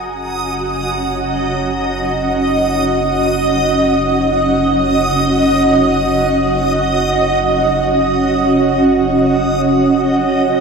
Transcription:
Already playing: analog synth bass F#1, ambient pad C#4 F#4 D#5 F#5 G#5 A#5, synth texture D#5 D#6

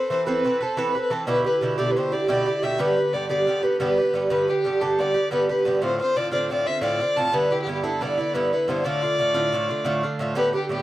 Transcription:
Already playing: bouzouki A4 B4
0.10 bouzouki E3 C4 A4 B4, fiddle C5
0.27 bouzouki E3 C4 A4 B4, fiddle B4
0.45 bouzouki E3 C4 A4 B4
0.61 bouzouki C4 A4 B4, fiddle A4
0.77 bouzouki E3 C4 A4 B4, fiddle B4
0.89 fiddle B4
0.95 bouzouki C4 A4 B4
1.01 fiddle B4
1.10 bouzouki E3 C4 A4 B4, fiddle A4
1.27 bouzouki B2 D3 E4 G4, fiddle B4
1.45 bouzouki D3 E4 G4, fiddle B4
1.61 bouzouki B2 D3 E4 G4
1.77 bouzouki B2 D3 E4 G4, fiddle D5
1.91 fiddle B4
1.96 bouzouki B2 D3 E4 G4, fiddle C5
2.12 bouzouki D3 E4 G4, fiddle D5
2.28 bouzouki B2 D3 E4 G4, fiddle D5
2.46 bouzouki D3 E4 G4
2.63 bouzouki B2 D3 E4 G4, fiddle E5
2.78 bouzouki G2 D3 B3 G4, fiddle B4
2.97 bouzouki D3 B3 G4
3.13 bouzouki G2 D3 B3 G4, fiddle D5
3.29 bouzouki G2 D3 B3 G4, fiddle D5
3.47 bouzouki G2 D3 B3 G4
3.63 bouzouki D3 B3 G4, fiddle B4
3.80 bouzouki G2 D3 B3 G4, fiddle B4
3.98 bouzouki D3 B3 G4
4.14 bouzouki G2 D3 B3 G4
4.30 bouzouki G2 D3 B3 G4, fiddle B4
4.48 bouzouki D3 B3 G4, fiddle G4
4.64 bouzouki G2 D3 B3 G4
4.81 bouzouki G2 D3 B3 G4, fiddle A4
4.99 bouzouki G2 D3 B3 G4, fiddle D5
5.14 bouzouki D3 B3 G4
5.31 bouzouki G2 D3 B3 G4, fiddle B4
5.49 bouzouki D3 B3 G4, fiddle B4
5.65 bouzouki G2 D3 B3 G4
5.82 bouzouki A2 D3 C4 F4, fiddle C5
6.00 bouzouki D3 C4 F4, fiddle C5
6.16 bouzouki A2 D3 C4 F4, fiddle D5
6.32 bouzouki A2 D3 C4 F4, fiddle D5
6.50 bouzouki A2 D3 C4 F4, fiddle D5
6.66 bouzouki D3 C4 F4, fiddle E5
6.81 bouzouki A2 D3 C4 F4, fiddle D5
7.00 bouzouki D3 C4 F4
7.16 bouzouki A2 D3 C4 F4, fiddle A5
7.32 bouzouki G2 D3 B3 E4, fiddle B4
7.50 bouzouki D3 B3 E4, fiddle G4
7.62 fiddle G4
7.67 bouzouki G2 D3 B3 E4
7.72 fiddle G4
7.79 fiddle G4
7.83 bouzouki G2 D3 B3 E4, fiddle A4
8.01 bouzouki G2 D3 B3 E4, fiddle D5
8.18 bouzouki D3 B3 E4
8.34 bouzouki G2 D3 B3 E4, fiddle B4
8.53 bouzouki D3 B3 E4, fiddle B4
8.68 bouzouki G2 D3 B3 E4, fiddle C5
8.84 bouzouki A2 D3 A3 F4, fiddle D5
9.02 bouzouki D3 A3 F4
9.18 bouzouki A2 D3 A3 F4
9.34 bouzouki A2 D3 A3 F4
9.52 bouzouki A2 D3 A3 F4
9.68 bouzouki D3 A3 F4
9.85 bouzouki A2 D3 A3 F4
10.03 bouzouki D3 A3 F4
10.19 bouzouki A2 D3 A3 F4
10.35 bouzouki A2 D3 B3 G4, fiddle B4
10.53 bouzouki D3 B3 G4, fiddle G4
10.69 bouzouki A2 D3 B3 G4, fiddle G4

